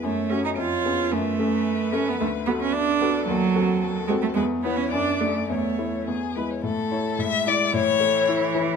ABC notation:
X:1
M:2/4
L:1/16
Q:1/4=111
K:F#dor
V:1 name="Violin"
c4 c4 | B8- | [K:A] B4 A4- | A4 A4 |
B2 c2 d4 | c4 G2 B c | A4 e2 d2 | c6 z2 |]
V:2 name="Grand piano"
F,,2 [A,CF]2 ^E,,2 [B,CG]2 | F,,2 [A,CA]4 [A,CA]2 | [K:A] D,,2 [B,FA]4 [B,FA]2 | ^D,,2 [^B,FA]4 [B,FA]2 |
E,,2 [B,EB]2 F,,2 [A,Dd]2 | E,,2 [A,Ec]2 E,,2 [G,EB]2 | A,,2 [Ec]2 A,,2 [Ed]2 | A,,2 A,2 E2 E,2 |]
V:3 name="Cello"
A,2 C D ^E4 | A,6 C B, | [K:A] A,2 B, C D4 | F,6 G, A, |
G,2 B, C D2 A,2 | A,4 z4 | A,4 G,4 | E,8 |]